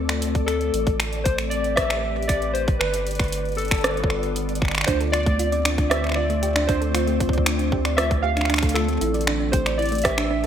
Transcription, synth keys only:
0.00 0.45 A4 medium
0.46 0.95 A4 medium
1.24 1.36 C5 medium
1.50 1.75 D5 medium
1.76 2.30 E5 loud
2.28 2.52 D5 loud
2.53 2.65 C5 medium
2.79 3.54 B4 medium
3.57 4.57 A4 medium
4.86 4.98 C5 medium
5.12 5.93 D5 medium
5.90 6.17 E5 loud
6.15 6.70 D5 loud
6.67 8.01 C5 medium
7.97 8.09 E5 loud
8.22 8.76 F5 loud
8.74 9.55 A4 medium
9.52 9.79 C5 medium
9.78 10.05 D5 medium
10.04 10.47 E5 loud

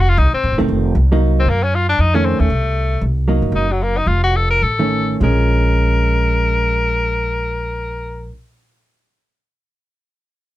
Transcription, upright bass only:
0.00 0.17 F1 medium
0.17 0.31 C2 medium
0.33 muted upright bass stroke soft
0.44 0.53 A1 medium
0.51 0.60 F1 medium
0.60 0.68 D#1 medium
0.68 0.94 F1 medium
0.95 1.44 C2 medium
1.46 1.95 F#2 medium
1.99 2.36 F2 medium
2.40 2.49 D#2 medium
2.50 2.99 C2 medium
3.01 3.40 C2 medium
3.42 3.51 G2 medium
3.52 4.03 F#1 medium
4.06 4.59 F1 medium
4.62 5.18 A1 medium
5.21 8.28 A#1 medium

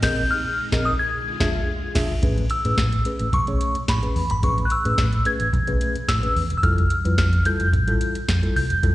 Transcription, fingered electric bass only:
0.03 0.22 A#1 medium
0.72 0.91 A#1 loud
1.40 1.59 E1 loud
1.95 2.14 E1 loud
2.23 2.45 A1 medium
2.65 2.75 A2 medium
2.77 2.99 A2 loud
3.20 3.30 A1 medium
3.33 3.55 B1 loud
3.88 4.00 A2 loud
4.16 4.27 E2 medium
4.31 4.41 G#1 medium
4.43 4.65 A1 loud
4.85 4.96 A2 loud
4.98 5.20 A2 loud
5.41 5.51 A1 medium
5.53 5.75 B1 medium
6.09 6.20 A2 loud
6.36 6.47 E2 medium
6.51 6.61 E1 medium
6.63 6.85 F1 loud
7.06 7.16 F2 loud
7.18 7.40 F2 loud
7.60 7.71 F1 loud
7.73 7.95 A1 medium
8.28 8.40 F2 loud
8.56 8.67 C2 medium
8.70 8.81 E1 medium
8.83 8.95 F1 medium

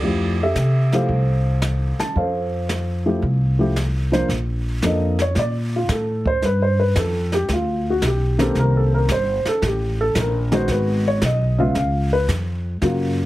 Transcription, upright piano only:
0.00 0.36 F3 medium
0.00 0.36 A3 medium
0.00 0.41 A4 medium
0.00 0.43 D5 medium
0.04 0.37 E4 soft
0.04 0.37 G4 medium
0.43 0.93 G4 medium
0.43 0.94 A4 medium
0.43 0.96 E5 medium
0.93 1.08 F3 medium
0.93 1.08 A3 medium
0.93 1.08 E4 medium
0.93 1.09 G4 medium
0.93 1.97 A4 medium
0.93 1.97 C5 medium
0.93 1.96 F5 medium
2.00 2.17 A5 medium
2.17 4.10 A4 medium
2.17 4.10 C5 medium
2.17 4.09 F5 medium
3.06 3.21 F3 medium
3.06 3.21 A3 medium
3.06 3.21 E4 soft
3.06 3.21 G4 medium
3.59 3.74 F3 medium
3.59 3.74 A3 medium
3.59 3.75 E4 soft
3.59 3.75 G4 medium
4.12 4.27 F3 medium
4.12 4.28 A#3 medium
4.12 4.28 D4 medium
4.12 4.28 C5 medium
4.82 5.16 F3 medium
4.82 5.16 A#3 soft
4.82 5.16 D4 soft
4.82 5.16 A4 medium
4.82 5.20 D#5 medium
5.22 5.37 C#5 medium
5.39 5.73 D5 medium
5.76 5.90 F4 medium
5.91 6.26 A4 medium
6.27 6.43 C5 medium
6.45 6.61 B4 medium
6.62 6.78 C5 medium
6.79 6.96 B4 medium
6.99 7.33 A4 medium
7.34 7.49 G4 medium
7.53 7.87 F4 medium
7.90 8.04 F#4 medium
8.06 8.39 G4 medium
8.38 9.05 D#3 medium
8.38 9.05 A#3 medium
8.38 9.06 C4 medium
8.38 9.06 G4 medium
8.38 8.56 A4 medium
8.59 8.75 A#4 medium
8.77 8.92 A4 medium
8.94 9.10 A#4 medium
9.12 9.46 C5 medium
9.48 9.63 A4 medium
9.66 10.00 G4 medium
10.01 10.16 A4 medium
10.19 10.53 A#4 medium
10.52 11.18 D#3 medium
10.52 11.19 G#3 medium
10.52 11.19 B3 medium
10.52 11.19 F#4 medium
10.52 10.69 C5 medium
10.71 11.06 B4 medium
11.08 11.23 C#5 medium
11.26 11.59 D#5 medium
11.58 11.73 C#3 medium
11.58 11.74 G#3 medium
11.58 11.74 B3 medium
11.58 11.74 F4 medium
11.58 11.75 E5 medium
11.77 12.12 F5 medium
12.13 12.22 B4 medium
12.82 13.26 C#3 medium
12.82 13.26 A#3 soft
12.82 13.26 F4 medium
12.82 13.26 F#4 soft

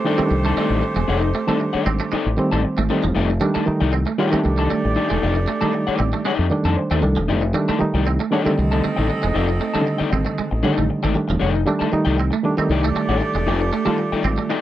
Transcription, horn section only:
0.00 2.86 A3 medium
0.00 2.86 C4 medium
0.00 2.86 G4 medium
0.00 2.86 C5 loud
4.19 6.99 A3 medium
4.19 6.99 D4 medium
4.19 6.99 G4 medium
4.19 6.99 D5 medium
8.31 11.11 C4 medium
8.31 11.11 D#4 medium
8.31 11.11 A4 medium
8.31 11.11 D#5 medium
12.43 14.61 A3 medium
12.43 14.61 D4 medium
12.43 14.61 G4 medium
12.43 14.61 D5 medium

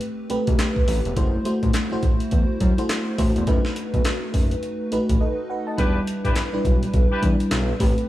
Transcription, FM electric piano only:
0.00 0.30 A3 medium
0.00 0.30 C4 medium
0.00 0.30 G4 medium
0.00 0.31 B4 loud
0.30 1.03 A3 medium
0.30 1.03 C4 medium
0.30 1.03 G4 medium
0.30 1.03 B4 loud
1.16 1.41 A3 medium
1.16 1.41 E4 medium
1.16 1.41 F#4 medium
1.16 1.42 C5 loud
1.45 1.82 A3 medium
1.45 1.82 E4 medium
1.45 1.82 F#4 medium
1.45 1.82 C5 loud
1.91 2.59 A3 medium
1.91 2.59 E4 medium
1.91 2.59 F#4 medium
1.91 2.60 C5 loud
2.78 3.12 A3 medium
2.78 3.12 E4 medium
2.78 3.12 F#4 medium
2.78 3.12 C5 loud
3.18 3.43 A3 medium
3.18 3.43 E4 medium
3.18 3.43 F#4 medium
3.18 3.44 C5 loud
3.47 4.42 A3 loud
3.47 4.43 D#4 medium
3.47 4.43 F#4 medium
3.47 4.43 B4 loud
4.92 5.65 A3 medium
4.92 5.65 D#4 medium
4.92 5.65 F#4 medium
4.92 5.21 B4 loud
5.21 5.48 A4 medium
5.21 5.48 D#5 medium
5.50 5.67 B4 medium
5.50 5.66 F#5 medium
5.67 5.95 D#5 medium
5.67 5.94 A5 medium
5.78 6.37 G3 medium
5.78 6.37 D4 medium
5.78 6.37 E4 medium
5.78 6.37 B4 medium
6.53 7.12 G3 medium
6.53 7.12 D4 medium
6.53 7.12 E4 medium
6.53 7.12 B4 loud
7.22 7.72 G3 medium
7.22 7.72 D4 medium
7.22 7.72 E4 medium
7.22 7.72 B4 medium
7.79 8.09 A3 medium
7.79 8.09 C4 medium
7.79 8.09 G4 medium
7.79 8.09 B4 loud

